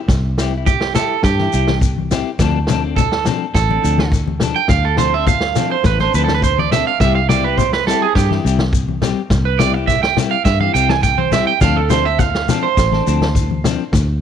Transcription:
0.08 fingered electric bass C2, kick, snare, shekere
0.38 clean electric guitar C4 E4 G4, snare, shekere
0.55 clean electric guitar E4, muted clean electric guitar stroke
0.66 clean electric guitar G4, kick, low conga, shekere
0.81 snare
0.94 clean electric guitar E4 A4, snare, low conga, shekere
0.99 clean electric guitar G4
1.23 fingered electric bass G2, clean electric guitar G4, kick, snare, shekere
1.39 clean electric guitar E4 G4, snare, high conga
1.53 fingered electric bass C2, clean electric guitar C4 E4 G4, shekere
1.67 snare, high conga
1.81 kick, shekere
1.98 high conga
2.11 clean electric guitar C4 E4 G4, snare, low conga, shekere
2.39 fingered electric bass D2, clean electric guitar F3 C4 D4 A4, kick, snare, shekere
2.67 clean electric guitar F3 C4 D4, snare, low conga, shekere
2.71 clean electric guitar A4
2.84 clean electric guitar C4 D4 A4
2.96 clean electric guitar A4, kick, low conga, shekere
3.12 snare
3.25 clean electric guitar F3 C4 D4 A4, snare, low conga, shekere
3.54 fingered electric bass A1, clean electric guitar A4, kick, snare, shekere
3.69 clean electric guitar C4 D4 A4, high conga
3.82 fingered electric bass D2, clean electric guitar F3 C4 D4 A4, shekere
3.98 snare, high conga
4.11 kick, snare, shekere
4.27 high conga
4.40 clean electric guitar F3 D4 A4, snare, low conga, shekere
4.56 clean electric guitar G5
4.68 fingered electric bass D2, clean electric guitar F5, kick, snare, shekere
4.85 clean electric guitar A4
4.97 clean electric guitar F3 C4 D4 C5, snare, low conga, shekere
5.01 clean electric guitar A4
5.14 clean electric guitar C4 D4 A4 E5
5.27 clean electric guitar F5, kick, low conga, shekere
5.41 snare
5.55 clean electric guitar F3 C4 D4, snare, low conga, shekere
5.60 clean electric guitar A4
5.71 clean electric guitar C5
5.84 fingered electric bass A1, clean electric guitar B4, kick, snare, high conga, shekere
5.99 clean electric guitar D4 A4 C5, snare, high conga
6.04 clean electric guitar C4
6.14 fingered electric bass D2, clean electric guitar F3 C4 D4 B4, shekere
6.19 clean electric guitar A4
6.24 clean electric guitar A4, snare
6.29 high conga
6.34 clean electric guitar B4
6.42 clean electric guitar C5, kick, shekere
6.59 clean electric guitar D5, high conga
6.72 clean electric guitar C4 D4 E5, muted clean electric guitar stroke, snare, low conga, shekere
6.76 clean electric guitar A4
6.87 clean electric guitar F5
7.00 fingered electric bass C2, clean electric guitar G3 C4 E4 E5, kick, snare, shekere
7.04 clean electric guitar G4
7.15 clean electric guitar F5
7.29 clean electric guitar G3 C4 E4 G4 D5, snare, low conga, shekere
7.44 clean electric guitar E4 G4 B4
7.49 clean electric guitar C4
7.58 clean electric guitar C5, kick, low conga, shekere
7.73 clean electric guitar B4, snare
7.87 clean electric guitar G3 C4 E4 G4 A4, snare, shekere
8.02 clean electric guitar G#4
8.15 fingered electric bass G2, clean electric guitar G4, kick, snare, shekere
8.31 clean electric guitar C4 E4 G4, snare, high conga
8.44 fingered electric bass C2, clean electric guitar G3 C4 E4 G4, shekere
8.59 snare, high conga
8.73 kick, shekere
8.88 high conga
9.02 clean electric guitar G3 C4 G4, muted clean electric guitar stroke, snare, low conga, shekere
9.30 fingered electric bass C2, kick, snare, shekere
9.45 clean electric guitar B4
9.59 clean electric guitar G3 C4 E4 G4 D5, snare, low conga, shekere
9.74 clean electric guitar C4 E4 G4, muted clean electric guitar stroke
9.87 clean electric guitar E5, kick, snare, low conga, shekere
10.03 clean electric guitar G5, snare
10.17 clean electric guitar G3 C4 E4 G4, snare, low conga, shekere
10.31 clean electric guitar F5
10.45 fingered electric bass G2, clean electric guitar E5, kick, snare, shekere
10.60 clean electric guitar C4 E4 G4 F5, high conga
10.74 fingered electric bass C2, clean electric guitar G3 C4 E4 G4 G5, shekere
10.89 clean electric guitar G#5, snare, high conga
11.03 clean electric guitar G5, kick, snare, shekere
11.18 clean electric guitar C5, high conga
11.32 clean electric guitar G3 C4 E4 E5, snare, low conga, shekere
11.36 clean electric guitar G4
11.47 clean electric guitar G5
11.61 fingered electric bass D2, clean electric guitar F3 C4 D4 A4 F5, kick, snare, shekere
11.77 clean electric guitar A4
11.90 clean electric guitar F3 C4 D4 A4 C5, snare, low conga, shekere
12.05 clean electric guitar C4 A4 E5
12.19 clean electric guitar F5, kick, snare, low conga, shekere
12.35 snare
12.48 clean electric guitar F3 C4 D4 A4, snare, low conga, shekere
12.63 clean electric guitar C5
12.77 fingered electric bass A1, kick, snare, shekere
12.92 clean electric guitar C4 D4 A4, snare, high conga
13.06 fingered electric bass D2, clean electric guitar F3 C4 D4 A4, shekere
13.22 snare, high conga
13.35 kick, shekere
13.51 high conga
13.64 clean electric guitar F3 C4 D4, muted clean electric guitar stroke, snare, low conga, shekere
13.92 fingered electric bass D2, kick, snare, shekere

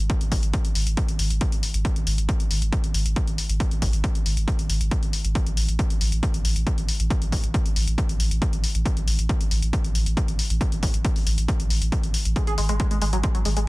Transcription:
0.10 kick, closed hi-hat
0.21 sub bass G#1, closed hi-hat
0.32 sub bass G#1, kick, open hi-hat
0.43 sub bass G#1, closed hi-hat
0.54 kick, closed hi-hat
0.65 closed hi-hat
0.75 sub bass G#1, open hi-hat
0.87 sub bass G#1, closed hi-hat
0.97 kick, closed hi-hat
1.08 sub bass G#1, closed hi-hat
1.19 sub bass G#1, open hi-hat
1.30 sub bass G#1, closed hi-hat
1.41 kick, closed hi-hat
1.52 sub bass G#1, closed hi-hat
1.63 open hi-hat
1.74 sub bass G#1, closed hi-hat
1.85 kick, closed hi-hat
1.96 sub bass G#1, closed hi-hat
2.07 sub bass G#1, open hi-hat
2.18 sub bass G#1, closed hi-hat
2.29 kick, closed hi-hat
2.40 closed hi-hat
2.51 sub bass G#1, open hi-hat
2.62 sub bass G#1, closed hi-hat
2.73 kick, closed hi-hat
2.84 sub bass G#1, closed hi-hat
2.94 sub bass G#1, open hi-hat
3.06 sub bass G#1, closed hi-hat
3.16 kick, closed hi-hat
3.27 sub bass G#1, closed hi-hat
3.38 open hi-hat
3.49 sub bass G#1, closed hi-hat
3.60 kick, closed hi-hat
3.71 sub bass G#1, closed hi-hat
3.82 sub bass G#1, kick, open hi-hat
3.93 sub bass G#1, closed hi-hat
4.04 kick, closed hi-hat
4.15 closed hi-hat
4.26 sub bass G#1, open hi-hat
4.37 sub bass G#1, closed hi-hat
4.48 kick, closed hi-hat
4.59 sub bass G#1, closed hi-hat
4.70 sub bass G#1, open hi-hat
4.81 sub bass G#1, closed hi-hat
4.91 kick, closed hi-hat
5.03 sub bass G#1, closed hi-hat
5.13 open hi-hat
5.25 sub bass G#1, closed hi-hat
5.35 kick, closed hi-hat
5.46 sub bass A1, closed hi-hat
5.57 sub bass A1, open hi-hat
5.68 sub bass A1, closed hi-hat
5.79 kick, closed hi-hat
5.90 closed hi-hat
6.01 sub bass A1, open hi-hat
6.12 sub bass A1, closed hi-hat
6.23 kick, closed hi-hat
6.34 sub bass A1, closed hi-hat
6.45 sub bass A1, open hi-hat
6.56 sub bass A1, closed hi-hat
6.67 kick, closed hi-hat
6.78 sub bass A1, closed hi-hat
6.89 open hi-hat
7.00 sub bass A1, closed hi-hat
7.10 kick, closed hi-hat
7.22 sub bass A1, closed hi-hat
7.32 sub bass A1, kick, open hi-hat
7.43 sub bass A1, closed hi-hat
7.54 kick, closed hi-hat
7.66 closed hi-hat
7.76 sub bass A1, open hi-hat
7.87 sub bass A1, closed hi-hat
7.98 kick, closed hi-hat
8.09 sub bass A1, closed hi-hat
8.20 sub bass A1, open hi-hat
8.31 sub bass A1, closed hi-hat
8.42 kick, closed hi-hat
8.53 sub bass A1, closed hi-hat
8.64 open hi-hat
8.75 sub bass A1, closed hi-hat
8.86 kick, closed hi-hat
8.97 sub bass A1, closed hi-hat
9.07 sub bass A1, open hi-hat
9.19 sub bass A1, closed hi-hat
9.29 kick, closed hi-hat
9.41 closed hi-hat
9.51 sub bass A1, open hi-hat
9.62 sub bass A1, closed hi-hat
9.73 kick, closed hi-hat
9.84 sub bass A1, closed hi-hat
9.95 sub bass A1, open hi-hat
10.06 sub bass A1, closed hi-hat
10.17 kick, closed hi-hat
10.28 sub bass A1, closed hi-hat
10.39 open hi-hat
10.50 sub bass A1, closed hi-hat
10.61 kick, closed hi-hat
10.72 sub bass A1, closed hi-hat
10.83 sub bass A1, kick, open hi-hat
10.94 sub bass A1, closed hi-hat
11.05 kick, closed hi-hat
11.16 open hi-hat
11.26 sub bass A1, open hi-hat
11.38 sub bass A1, closed hi-hat
11.48 kick, closed hi-hat
11.59 sub bass A1, closed hi-hat
11.70 sub bass A1, open hi-hat
11.81 sub bass A1, closed hi-hat
11.92 kick, closed hi-hat
12.03 sub bass A1, closed hi-hat
12.14 open hi-hat
12.25 sub bass A1, closed hi-hat
12.36 synth arpeggio sound G#3, kick, closed hi-hat
12.47 sub bass G#1, synth arpeggio sound G#4, closed hi-hat
12.58 sub bass G#1, synth arpeggio sound G#3, open hi-hat
12.69 sub bass G#1, synth arpeggio sound G#3, closed hi-hat
12.80 synth arpeggio sound G#3, kick, closed hi-hat
12.91 synth arpeggio sound G#3, closed hi-hat
13.02 sub bass G#1, synth arpeggio sound G#3, open hi-hat
13.13 sub bass G#1, synth arpeggio sound F#3, closed hi-hat
13.23 synth arpeggio sound G#3, kick, closed hi-hat
13.35 sub bass G#1, synth arpeggio sound F#3, closed hi-hat
13.45 sub bass G#1, synth arpeggio sound G#3, open hi-hat
13.57 sub bass G#1, synth arpeggio sound G#3, closed hi-hat

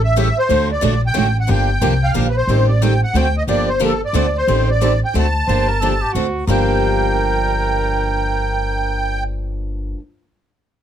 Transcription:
Already playing: upright bass A1
0.04 accordion E5
0.16 steel-string acoustic guitar C#3 E3 G3 A3 C#4 E4 G4 A4
0.38 accordion C5
0.49 upright bass D2, steel-string acoustic guitar D3 F#3 A3 D4 F#4 A4
0.72 accordion D5
0.81 upright bass A#1, steel-string acoustic guitar D3 F#3 A3 D4 F#4 A4
1.07 accordion G5
1.14 upright bass A1, steel-string acoustic guitar D3 F#3 A3 D4 F#4
1.19 steel-string acoustic guitar A4
1.40 accordion F#5
1.47 upright bass G1, steel-string acoustic guitar D3 F3 A#3 D4 G4
1.52 accordion G5
1.81 upright bass C2, steel-string acoustic guitar D3 F3 A#3 D4 G4
2.04 accordion F5
2.14 upright bass A#1, steel-string acoustic guitar D3 F3 A#3 D4 G4
2.29 accordion B4
2.37 accordion C5
2.47 upright bass A1, steel-string acoustic guitar D#3 G3 C4 G4 A4
2.69 accordion D5
2.82 steel-string acoustic guitar D#3 G3 C4 G4 A4, accordion G5
3.04 accordion F#5
3.13 upright bass D2, steel-string acoustic guitar D3 A3 C4 F#4 A4, accordion G5
3.38 accordion D#5
3.47 upright bass G1, steel-string acoustic guitar D3 F3 A#3 D4 G4, accordion D5
3.68 accordion C5
3.79 steel-string acoustic guitar D3 F3 A#3 D4 G4
3.84 accordion A4
4.05 accordion D5
4.13 upright bass D2, steel-string acoustic guitar D3 A3 C4 F#4 A4
4.37 accordion C5
4.47 upright bass A1, steel-string acoustic guitar D#3 G3 C4 G4 A4
4.71 accordion D5
4.81 steel-string acoustic guitar D#3 G3 C4 G4 A4
5.05 accordion G5
5.14 upright bass D2, steel-string acoustic guitar D3 A3 C4 F#4 A4
5.19 accordion A5
5.47 upright bass G1, steel-string acoustic guitar D3 F3 A#3 D4 G4, cor anglais C5
5.68 cor anglais A#4
5.81 steel-string acoustic guitar D3 F3 A#3 D4 G4, cor anglais A4
6.01 cor anglais G4
6.13 upright bass D2, steel-string acoustic guitar D3 A3 C4 F#4 A4, cor anglais F#4
6.47 upright bass G1, steel-string acoustic guitar G2 D3 F3 A#3 D4 G4, cor anglais A#4, accordion G5

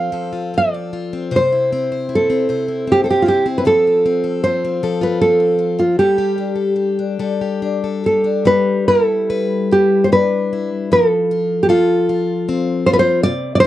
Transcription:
Already playing: steel-string acoustic guitar F3 C4 F4 A4, nylon-string guitar F5
0.12 steel-string acoustic guitar F3 A4
0.33 steel-string acoustic guitar F4
0.54 steel-string acoustic guitar C4, nylon-string guitar D5
0.74 steel-string acoustic guitar A4
0.93 steel-string acoustic guitar F4
1.13 steel-string acoustic guitar C4
1.31 steel-string acoustic guitar C3 C5
1.36 nylon-string guitar C5
1.52 steel-string acoustic guitar E4
1.72 steel-string acoustic guitar C4
1.92 steel-string acoustic guitar C5
2.09 steel-string acoustic guitar E4
2.15 nylon-string guitar A4
2.30 steel-string acoustic guitar C4
2.49 steel-string acoustic guitar C3 C5
2.68 steel-string acoustic guitar E4
2.87 steel-string acoustic guitar C4
2.92 nylon-string guitar G4
3.04 nylon-string guitar A4, steel-string acoustic guitar C5
3.11 nylon-string guitar G4
3.22 steel-string acoustic guitar E4, nylon-string guitar F4
3.28 nylon-string guitar G4
3.46 steel-string acoustic guitar C4
3.58 nylon-string guitar B4
3.65 steel-string acoustic guitar F3 A4, nylon-string guitar A4
3.87 steel-string acoustic guitar F4
4.06 steel-string acoustic guitar C4
4.24 steel-string acoustic guitar A4
4.44 steel-string acoustic guitar F4, nylon-string guitar C5
4.65 steel-string acoustic guitar C4
4.83 steel-string acoustic guitar F3 A4
5.01 steel-string acoustic guitar F4, nylon-string guitar B4
5.21 steel-string acoustic guitar C4, nylon-string guitar A4
5.40 steel-string acoustic guitar A4
5.59 steel-string acoustic guitar F4
5.79 steel-string acoustic guitar C4, nylon-string guitar F4
5.99 steel-string acoustic guitar G3 A4, nylon-string guitar G4
6.18 steel-string acoustic guitar G4
6.38 steel-string acoustic guitar D4
6.56 steel-string acoustic guitar A4
6.76 steel-string acoustic guitar G4
6.99 steel-string acoustic guitar D4
7.19 steel-string acoustic guitar G3 A4
7.41 steel-string acoustic guitar G4
7.62 steel-string acoustic guitar D4
7.84 steel-string acoustic guitar A4
8.04 steel-string acoustic guitar G4, nylon-string guitar A4
8.24 steel-string acoustic guitar D4
8.45 steel-string acoustic guitar G3, nylon-string guitar B4
8.88 steel-string acoustic guitar E4, nylon-string guitar A4
9.30 steel-string acoustic guitar B4
9.71 steel-string acoustic guitar E4, nylon-string guitar G4
10.04 nylon-string guitar C5
10.12 steel-string acoustic guitar D4, nylon-string guitar B4
10.53 steel-string acoustic guitar E4
10.92 steel-string acoustic guitar F3, nylon-string guitar A4
11.31 steel-string acoustic guitar F4
11.63 nylon-string guitar G4
11.69 nylon-string guitar F4, steel-string acoustic guitar A4
12.09 steel-string acoustic guitar F4
12.49 steel-string acoustic guitar C4
12.86 steel-string acoustic guitar F4, nylon-string guitar C5
12.93 nylon-string guitar B4
12.99 nylon-string guitar C5
13.23 steel-string acoustic guitar C3, nylon-string guitar D5
13.55 nylon-string guitar D5
13.60 nylon-string guitar C5

